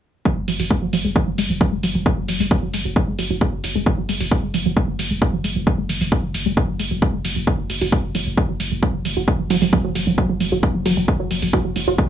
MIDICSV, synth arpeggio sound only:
0, 0, Header, 1, 2, 480
1, 0, Start_track
1, 0, Tempo, 451128
1, 271, Time_signature, 4, 2, 24, 8
1, 12866, End_track
2, 0, Start_track
2, 0, Title_t, "Synth arpeggio sound"
2, 0, Program_c, 0, 84
2, 271, Note_on_c, 0, 54, 82
2, 303, Note_off_c, 0, 54, 0
2, 394, Note_on_c, 0, 56, 74
2, 445, Note_off_c, 0, 56, 0
2, 512, Note_on_c, 0, 54, 73
2, 591, Note_off_c, 0, 54, 0
2, 635, Note_on_c, 0, 54, 77
2, 665, Note_off_c, 0, 54, 0
2, 751, Note_on_c, 0, 56, 80
2, 804, Note_off_c, 0, 56, 0
2, 874, Note_on_c, 0, 54, 78
2, 950, Note_off_c, 0, 54, 0
2, 991, Note_on_c, 0, 54, 73
2, 1023, Note_off_c, 0, 54, 0
2, 1113, Note_on_c, 0, 56, 75
2, 1164, Note_off_c, 0, 56, 0
2, 1231, Note_on_c, 0, 54, 81
2, 1311, Note_off_c, 0, 54, 0
2, 1354, Note_on_c, 0, 54, 76
2, 1384, Note_off_c, 0, 54, 0
2, 1472, Note_on_c, 0, 56, 72
2, 1525, Note_off_c, 0, 56, 0
2, 1595, Note_on_c, 0, 54, 74
2, 1670, Note_off_c, 0, 54, 0
2, 1712, Note_on_c, 0, 54, 80
2, 1743, Note_off_c, 0, 54, 0
2, 1835, Note_on_c, 0, 56, 75
2, 1885, Note_off_c, 0, 56, 0
2, 1952, Note_on_c, 0, 54, 76
2, 2031, Note_off_c, 0, 54, 0
2, 2074, Note_on_c, 0, 54, 75
2, 2105, Note_off_c, 0, 54, 0
2, 2192, Note_on_c, 0, 56, 83
2, 2245, Note_off_c, 0, 56, 0
2, 2315, Note_on_c, 0, 54, 74
2, 2390, Note_off_c, 0, 54, 0
2, 2432, Note_on_c, 0, 54, 76
2, 2463, Note_off_c, 0, 54, 0
2, 2555, Note_on_c, 0, 56, 77
2, 2605, Note_off_c, 0, 56, 0
2, 2672, Note_on_c, 0, 54, 79
2, 2751, Note_off_c, 0, 54, 0
2, 2795, Note_on_c, 0, 54, 75
2, 2825, Note_off_c, 0, 54, 0
2, 2913, Note_on_c, 0, 56, 75
2, 2965, Note_off_c, 0, 56, 0
2, 3035, Note_on_c, 0, 54, 76
2, 3110, Note_off_c, 0, 54, 0
2, 3152, Note_on_c, 0, 54, 78
2, 3184, Note_off_c, 0, 54, 0
2, 3275, Note_on_c, 0, 56, 75
2, 3325, Note_off_c, 0, 56, 0
2, 3391, Note_on_c, 0, 54, 73
2, 3471, Note_off_c, 0, 54, 0
2, 3515, Note_on_c, 0, 54, 70
2, 3545, Note_off_c, 0, 54, 0
2, 3632, Note_on_c, 0, 56, 78
2, 3685, Note_off_c, 0, 56, 0
2, 3755, Note_on_c, 0, 54, 75
2, 3830, Note_off_c, 0, 54, 0
2, 3872, Note_on_c, 0, 54, 74
2, 3904, Note_off_c, 0, 54, 0
2, 3995, Note_on_c, 0, 56, 78
2, 4045, Note_off_c, 0, 56, 0
2, 4112, Note_on_c, 0, 54, 81
2, 4191, Note_off_c, 0, 54, 0
2, 4235, Note_on_c, 0, 54, 74
2, 4265, Note_off_c, 0, 54, 0
2, 4352, Note_on_c, 0, 56, 76
2, 4405, Note_off_c, 0, 56, 0
2, 4475, Note_on_c, 0, 54, 77
2, 4550, Note_off_c, 0, 54, 0
2, 4593, Note_on_c, 0, 54, 85
2, 4624, Note_off_c, 0, 54, 0
2, 4715, Note_on_c, 0, 56, 78
2, 4765, Note_off_c, 0, 56, 0
2, 4832, Note_on_c, 0, 54, 73
2, 4911, Note_off_c, 0, 54, 0
2, 4955, Note_on_c, 0, 54, 75
2, 4985, Note_off_c, 0, 54, 0
2, 5072, Note_on_c, 0, 56, 78
2, 5125, Note_off_c, 0, 56, 0
2, 5194, Note_on_c, 0, 54, 72
2, 5270, Note_off_c, 0, 54, 0
2, 5312, Note_on_c, 0, 54, 75
2, 5343, Note_off_c, 0, 54, 0
2, 5434, Note_on_c, 0, 56, 75
2, 5484, Note_off_c, 0, 56, 0
2, 5551, Note_on_c, 0, 54, 80
2, 5631, Note_off_c, 0, 54, 0
2, 5674, Note_on_c, 0, 54, 77
2, 5704, Note_off_c, 0, 54, 0
2, 5791, Note_on_c, 0, 56, 73
2, 5844, Note_off_c, 0, 56, 0
2, 5913, Note_on_c, 0, 54, 74
2, 5989, Note_off_c, 0, 54, 0
2, 6031, Note_on_c, 0, 54, 83
2, 6063, Note_off_c, 0, 54, 0
2, 6154, Note_on_c, 0, 56, 75
2, 6205, Note_off_c, 0, 56, 0
2, 6271, Note_on_c, 0, 54, 74
2, 6351, Note_off_c, 0, 54, 0
2, 6394, Note_on_c, 0, 54, 74
2, 6424, Note_off_c, 0, 54, 0
2, 6511, Note_on_c, 0, 56, 81
2, 6564, Note_off_c, 0, 56, 0
2, 6633, Note_on_c, 0, 54, 76
2, 6709, Note_off_c, 0, 54, 0
2, 6751, Note_on_c, 0, 54, 74
2, 6783, Note_off_c, 0, 54, 0
2, 6873, Note_on_c, 0, 56, 76
2, 6924, Note_off_c, 0, 56, 0
2, 6990, Note_on_c, 0, 54, 83
2, 7070, Note_off_c, 0, 54, 0
2, 7113, Note_on_c, 0, 54, 72
2, 7144, Note_off_c, 0, 54, 0
2, 7231, Note_on_c, 0, 56, 74
2, 7284, Note_off_c, 0, 56, 0
2, 7354, Note_on_c, 0, 54, 76
2, 7430, Note_off_c, 0, 54, 0
2, 7472, Note_on_c, 0, 54, 80
2, 7503, Note_off_c, 0, 54, 0
2, 7595, Note_on_c, 0, 56, 77
2, 7645, Note_off_c, 0, 56, 0
2, 7712, Note_on_c, 0, 54, 75
2, 7791, Note_off_c, 0, 54, 0
2, 7833, Note_on_c, 0, 54, 76
2, 7864, Note_off_c, 0, 54, 0
2, 7951, Note_on_c, 0, 54, 97
2, 8004, Note_off_c, 0, 54, 0
2, 8074, Note_on_c, 0, 54, 74
2, 8150, Note_off_c, 0, 54, 0
2, 8192, Note_on_c, 0, 54, 74
2, 8223, Note_off_c, 0, 54, 0
2, 8313, Note_on_c, 0, 54, 98
2, 8364, Note_off_c, 0, 54, 0
2, 8431, Note_on_c, 0, 54, 80
2, 8511, Note_off_c, 0, 54, 0
2, 8555, Note_on_c, 0, 54, 77
2, 8585, Note_off_c, 0, 54, 0
2, 8671, Note_on_c, 0, 54, 97
2, 8724, Note_off_c, 0, 54, 0
2, 8795, Note_on_c, 0, 54, 76
2, 8870, Note_off_c, 0, 54, 0
2, 8911, Note_on_c, 0, 54, 80
2, 8943, Note_off_c, 0, 54, 0
2, 9035, Note_on_c, 0, 54, 98
2, 9085, Note_off_c, 0, 54, 0
2, 9152, Note_on_c, 0, 54, 74
2, 9231, Note_off_c, 0, 54, 0
2, 9274, Note_on_c, 0, 54, 74
2, 9305, Note_off_c, 0, 54, 0
2, 9392, Note_on_c, 0, 54, 99
2, 9445, Note_off_c, 0, 54, 0
2, 9515, Note_on_c, 0, 54, 74
2, 9590, Note_off_c, 0, 54, 0
2, 9633, Note_on_c, 0, 54, 77
2, 9664, Note_off_c, 0, 54, 0
2, 9755, Note_on_c, 0, 54, 102
2, 9805, Note_off_c, 0, 54, 0
2, 9872, Note_on_c, 0, 54, 83
2, 9951, Note_off_c, 0, 54, 0
2, 9995, Note_on_c, 0, 54, 71
2, 10025, Note_off_c, 0, 54, 0
2, 10112, Note_on_c, 0, 54, 100
2, 10164, Note_off_c, 0, 54, 0
2, 10235, Note_on_c, 0, 54, 78
2, 10310, Note_off_c, 0, 54, 0
2, 10352, Note_on_c, 0, 54, 82
2, 10383, Note_off_c, 0, 54, 0
2, 10476, Note_on_c, 0, 54, 102
2, 10525, Note_off_c, 0, 54, 0
2, 10592, Note_on_c, 0, 54, 76
2, 10671, Note_off_c, 0, 54, 0
2, 10714, Note_on_c, 0, 54, 79
2, 10744, Note_off_c, 0, 54, 0
2, 10832, Note_on_c, 0, 54, 102
2, 10885, Note_off_c, 0, 54, 0
2, 10954, Note_on_c, 0, 54, 74
2, 11030, Note_off_c, 0, 54, 0
2, 11071, Note_on_c, 0, 54, 73
2, 11103, Note_off_c, 0, 54, 0
2, 11194, Note_on_c, 0, 54, 97
2, 11244, Note_off_c, 0, 54, 0
2, 11311, Note_on_c, 0, 54, 81
2, 11391, Note_off_c, 0, 54, 0
2, 11434, Note_on_c, 0, 54, 76
2, 11464, Note_off_c, 0, 54, 0
2, 11552, Note_on_c, 0, 54, 101
2, 11605, Note_off_c, 0, 54, 0
2, 11675, Note_on_c, 0, 54, 76
2, 11750, Note_off_c, 0, 54, 0
2, 11792, Note_on_c, 0, 54, 84
2, 11823, Note_off_c, 0, 54, 0
2, 11916, Note_on_c, 0, 54, 100
2, 11966, Note_off_c, 0, 54, 0
2, 12032, Note_on_c, 0, 54, 76
2, 12111, Note_off_c, 0, 54, 0
2, 12155, Note_on_c, 0, 54, 76
2, 12185, Note_off_c, 0, 54, 0
2, 12272, Note_on_c, 0, 54, 101
2, 12325, Note_off_c, 0, 54, 0
2, 12395, Note_on_c, 0, 54, 78
2, 12471, Note_off_c, 0, 54, 0
2, 12513, Note_on_c, 0, 54, 77
2, 12544, Note_off_c, 0, 54, 0
2, 12635, Note_on_c, 0, 54, 101
2, 12685, Note_off_c, 0, 54, 0
2, 12753, Note_on_c, 0, 54, 78
2, 12832, Note_off_c, 0, 54, 0
2, 12866, End_track
0, 0, End_of_file